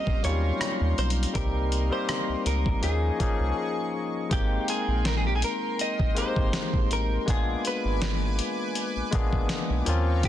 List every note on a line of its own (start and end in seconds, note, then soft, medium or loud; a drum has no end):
0.00 0.29 G3 medium
0.00 0.23 A#3 medium
0.00 1.35 C4 medium
0.00 0.25 C#4 medium
0.00 0.26 F4 medium
0.00 1.32 G4 medium
0.00 1.36 G4 medium
0.00 0.24 D#5 loud
0.00 1.32 F5 medium
0.00 1.32 A#5 medium
0.00 2.79 C6 medium
0.07 0.14 D#2 medium
0.07 kick medium
0.22 0.52 D#2 medium
0.22 0.30 F#3 medium
0.22 1.02 A#3 medium
0.22 1.03 C#4 medium
0.22 1.02 D#4 medium
0.22 1.03 F4 medium
0.22 0.98 C#5 loud
0.22 closed hi-hat medium
0.29 1.05 G3 medium
0.61 cross-stick loud
0.61 closed hi-hat medium
0.81 0.94 D#2 medium
0.98 1.26 B1 medium
0.98 1.09 C5 medium
0.98 closed hi-hat soft
1.10 closed hi-hat medium
1.23 closed hi-hat medium
1.33 1.91 C2 loud
1.33 1.73 G3 medium
1.33 1.74 A#3 medium
1.33 1.74 C4 medium
1.33 1.75 D#4 medium
1.33 1.75 G4 medium
1.33 2.82 A#4 medium
1.33 1.92 A#4 medium
1.33 4.28 D#5 medium
1.33 kick loud
1.33 closed hi-hat medium
1.72 closed hi-hat medium
1.90 2.81 G3 medium
1.90 2.81 A#3 medium
1.90 2.82 C4 medium
1.90 2.82 D#4 medium
1.90 2.83 G4 medium
1.90 2.43 C5 medium
2.09 cross-stick loud
2.09 closed hi-hat medium
2.29 2.36 C#2 medium
2.46 2.74 C#2 medium
2.46 2.83 A#4 medium
2.46 closed hi-hat medium
2.66 kick medium
2.81 3.11 D#2 loud
2.81 3.12 F3 medium
2.81 3.13 A#3 medium
2.81 3.13 C#4 medium
2.81 3.14 D#4 medium
2.81 4.30 G#4 medium
2.81 3.90 G#4 medium
2.81 3.14 G#4 medium
2.81 4.30 C#6 medium
2.81 closed hi-hat medium
3.18 3.98 F3 medium
3.18 3.98 A#3 medium
3.18 3.99 C#4 medium
3.18 3.99 D#4 medium
3.18 4.00 G#4 medium
3.18 kick loud
3.18 closed hi-hat medium
3.40 3.53 C2 medium
4.29 4.59 G#1 loud
4.29 5.35 G#3 medium
4.29 5.35 A#3 medium
4.29 5.36 C4 medium
4.29 5.36 D#4 medium
4.29 4.69 G4 medium
4.29 7.25 A#4 medium
4.29 7.25 G5 medium
4.29 5.37 G5 medium
4.29 7.25 C6 medium
4.29 kick loud
4.29 closed hi-hat medium
4.68 5.07 G#4 loud
4.68 closed hi-hat medium
4.88 5.44 A#1 medium
5.05 5.16 A#4 medium
5.05 snare loud
5.05 closed hi-hat medium
5.17 5.26 G#4 medium
5.27 5.35 G4 medium
5.36 5.43 G#4 medium
5.42 5.81 A#4 loud
5.42 closed hi-hat medium
5.79 6.18 D#5 loud
5.79 closed hi-hat medium
5.99 kick medium
6.15 6.25 G#1 soft
6.15 6.94 G#3 medium
6.15 6.94 A#3 medium
6.15 6.95 C4 medium
6.15 6.95 D#4 medium
6.15 6.96 G4 medium
6.15 6.93 C5 loud
6.15 closed hi-hat medium
6.36 6.49 G#1 medium
6.36 kick medium
6.53 snare loud
6.53 closed hi-hat medium
6.73 6.86 G1 medium
6.73 kick loud
6.91 7.18 A1 medium
6.91 7.30 A#4 medium
6.91 closed hi-hat medium
7.26 7.56 A#1 loud
7.26 8.31 G#3 medium
7.26 8.32 A#3 medium
7.26 8.32 B3 medium
7.26 8.33 D4 medium
7.26 8.33 F4 medium
7.26 9.84 B4 medium
7.26 9.84 G#5 medium
7.26 9.84 D6 medium
7.26 kick loud
7.26 closed hi-hat medium
7.30 7.63 G#4 medium
7.65 9.84 B4 loud
7.65 closed hi-hat medium
7.85 8.41 G#1 medium
8.02 snare loud
8.02 closed hi-hat medium
8.39 closed hi-hat medium
8.75 closed hi-hat medium
8.96 9.03 A#1 medium
9.11 9.41 A#1 medium
9.11 9.86 G#3 medium
9.11 9.85 A#3 medium
9.11 9.87 B3 medium
9.11 9.88 D4 medium
9.11 9.88 G#4 loud
9.11 kick loud
9.11 closed hi-hat medium
9.33 kick medium
9.49 snare loud
9.49 closed hi-hat medium
9.70 9.83 B1 medium
9.85 10.28 D#2 loud
9.85 10.28 F3 loud
9.85 10.28 A#3 medium
9.85 10.28 C4 medium
9.85 10.28 C#4 medium
9.85 10.28 A#4 medium
9.85 10.28 F5 medium
9.85 10.28 G5 medium
9.85 10.28 C#6 medium
9.85 closed hi-hat medium
9.89 10.28 F4 loud
10.23 10.28 G4 medium
10.23 kick loud
10.23 closed hi-hat medium